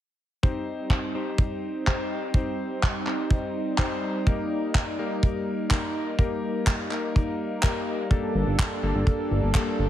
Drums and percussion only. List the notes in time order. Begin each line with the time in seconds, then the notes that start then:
0.43 kick
0.90 kick, clap
1.38 kick
1.87 kick, clap
2.34 kick
2.83 kick, clap
3.07 clap
3.31 kick
3.78 kick, clap
4.27 kick
4.75 kick, clap
5.23 kick
5.70 kick, clap
6.19 kick
6.67 kick, clap
6.91 clap
7.16 kick
7.63 kick, clap
8.11 kick
8.59 kick, clap
9.07 kick
9.55 kick, clap